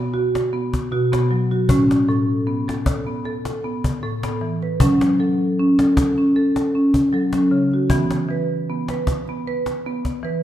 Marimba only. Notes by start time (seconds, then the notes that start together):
Already playing: B2 B3
0.14 F#4
0.53 B3
0.91 B2 F#4
1.12 B3
1.31 F#3
1.51 F#4
1.69 A2 C#4
2.08 A2 A4
2.47 B3
2.68 A4
3.07 B3
3.25 A4
3.64 B3
4.03 A2 A4
4.24 B3
4.41 E3
4.63 B4
4.80 F#3 C#4
5.19 F#3 A4
5.59 C#4
5.79 A4
6.18 C#4
6.36 A4
6.75 C#4
7.13 F#3 A4
7.34 C#4
7.51 C#3
7.74 F#4
7.90 E3 B3
8.29 E3 B4
8.70 B3
8.90 B4
9.29 B3
9.48 B4
9.86 B3
10.23 E3 B4